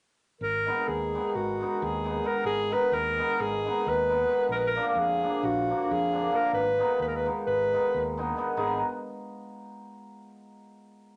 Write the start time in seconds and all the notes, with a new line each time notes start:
0.41 G#1 A#4
0.66 D#3 G#3 B3 D#4
0.88 D#2 G#4
1.13 D#3 G#3 B3 D#4
1.35 G#1 F#4
1.60 D#3 G#3 B3 D#4
1.82 D#2 G#4
2.04 D#3 G#3 B3 D#4
2.24 D#3 G#3 B3 D#4 A#4
2.45 G#1 G#4
2.70 D#3 G#3 B3 D#4 B4
2.92 D#2 A#4
3.18 D#3 G#3 B3 D#4
3.40 G#1 G#4
3.65 D#3 G#3 B3 D#4
3.87 D#2 B4
4.09 D#3 G#3 B3 D#4
4.29 D#3 G#3 B3 D#4
4.49 A#1 A#4
4.55 B4
4.67 A#4
4.75 D3 F3 A#3 D4
4.89 A#4
4.95 F2 G#4
5.22 D3 F3 A#3 D4
5.43 A#1 F#4
5.69 D3 F3 A#3 D4
5.91 F2 G#4
6.12 D3 F3 A#3 D4
6.32 D3 F3 A#3 D4
6.36 A#4
6.53 G#1 B4
6.78 D#3 G#3 B3 D#4
7.00 D#2 B4
7.07 A#4
7.16 B4
7.26 D#3 G#3 B3 D#4
7.46 G#1 B4
7.73 D#3 G#3 B3 D#4
7.94 D#2
8.17 D#3 G#3 B3 D#4
8.37 D#3 G#3 B3 D#4
8.57 G#1 D#3 G#3 B3 D#4 G#4